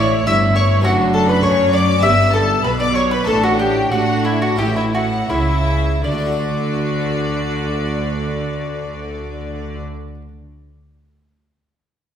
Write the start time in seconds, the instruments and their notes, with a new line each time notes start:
Already playing: double bass section A1, harpsichord A2 A3 E4 A4, cello section A2, viola section E4
0.00 mandolin C#5, violin section C#5
0.26 double bass section G1, harpsichord G2, cello section G2, viola section E4, mandolin E5, violin section E5 E6
0.56 mandolin C#5, violin section C#5 C#6
0.81 double bass section F#1, harpsichord A3 D4 A4, viola section D4
0.85 cello section F#2, harpsichord F#2, mandolin F#4, violin section F#4 F#5
1.14 mandolin A4, violin section A4 A5
1.28 violin section B4 B5, mandolin B4
1.43 double bass section F#2, harpsichord F#3, cello section F#3, viola section C#4, mandolin C#5, violin section C#5 C#6
1.73 mandolin D5, violin section D5 D6
1.99 harpsichord B3 E4 G4, mandolin E5, violin section E6
2.03 double bass section G1, harpsichord G2, cello section G2, viola section B3, violin section E5
2.33 mandolin A4, violin section A4 A5
2.64 double bass section B1, harpsichord B2, cello section B2, viola section B3, mandolin B4, violin section B4 B5
2.80 mandolin D5, violin section D5 D6
2.95 violin section C#5 C#6, mandolin C#5
3.11 mandolin B4, violin section B4 B5
3.23 harpsichord A3 D4 E4
3.27 double bass section A1, harpsichord A2, cello section A2, viola section D4, mandolin A4, violin section A4 A5
3.43 violin section F#4 F#5, mandolin F#4
3.59 violin section G4 G5, mandolin G4
3.91 double bass section A2, harpsichord A3, cello section A3, viola section D4, mandolin F#4, violin section F#4 F#5
4.24 mandolin E4, violin section E4 E5
4.42 violin section F#4 F#5, mandolin F#4
4.56 double bass section A1, harpsichord A2 C#4 E4, cello section A2, viola section E4, mandolin G4, violin section G4 G5
4.76 violin section E4 E5, mandolin E4
4.94 violin section F#4 F#5, mandolin F#4
5.29 double bass section C#2, harpsichord C#3, cello section C#3, violin section E4 E5, viola section E4, mandolin E4
6.04 double bass section D2, cello section D3, harpsichord D3, viola section F#4, violin section D5, mandolin D5
6.11 harpsichord A3
6.18 harpsichord D4
6.25 harpsichord F#4
6.32 harpsichord D5